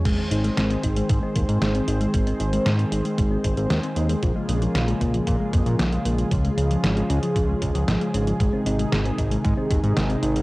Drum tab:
CC |x---------------|----------------|----------------|----------------|
HH |x-xxxxxxx-xxxxxx|xxxxxxxxx-xxxxxx|x-xxxxxxx-xxxxxx|xxxxxxxxx-xxxxxx|
SD |----o-------o---|----o-------o---|----o-------o---|----o-------o---|
BD |o-----o-o-o-----|o-------o-o-----|o-----o-o-o-----|o-------o-o-----|

CC |----------------|
HH |x-xxxxxxx-xxxxxx|
SD |----o-------o---|
BD |o-----o-o-o-----|